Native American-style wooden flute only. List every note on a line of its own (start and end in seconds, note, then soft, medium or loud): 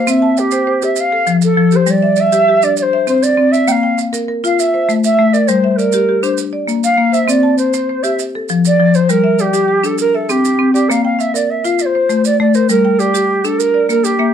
0.00 0.11 F5 medium
0.10 0.40 E5 medium
0.39 0.85 G4 medium
0.84 1.01 E5 medium
1.00 1.33 F5 loud
1.44 1.77 A4 medium
1.75 1.92 C5 medium
1.90 2.21 D5 medium
2.20 2.65 E5 loud
2.64 2.78 D5 loud
2.78 3.06 C5 loud
2.78 2.83 D5 loud
3.09 3.24 C5 medium
3.23 3.53 D5 loud
3.52 3.69 E5 loud
3.68 3.98 F5 medium
3.68 3.72 G5 medium
4.46 4.61 F5 loud
4.59 4.93 E5 medium
5.05 5.35 E5 loud
5.33 5.49 D5 medium
5.48 5.70 C5 medium
5.70 5.78 C5 medium
5.76 6.24 A#4 medium
6.22 6.38 C5 medium
6.84 7.14 F5 loud
7.13 7.31 E5 loud
7.29 7.58 D5 medium
7.58 8.04 C5 medium
8.03 8.18 E5 medium
8.67 8.96 D5 loud
8.95 9.11 C5 medium
9.10 9.42 A#4 loud
9.40 9.87 G4 loud
9.85 10.00 A4 medium
10.00 10.17 A#4 loud
10.15 10.31 A4 medium
10.30 10.73 G4 medium
10.73 10.91 G4 medium
10.90 11.04 F5 medium
11.05 11.21 F5 medium
11.20 11.34 E5 medium
11.35 11.52 D5 medium
11.50 11.66 E5 medium
11.65 11.83 F5 medium
11.81 11.86 D5 medium
11.85 12.25 C5 medium
12.25 12.39 D5 loud
12.40 12.56 D5 medium
12.55 12.69 C5 medium
12.70 13.00 A#4 loud
12.99 13.46 G4 loud
13.44 13.60 A4 medium
13.59 13.89 A#4 loud
13.90 14.05 A#4 medium
14.04 14.34 G4 medium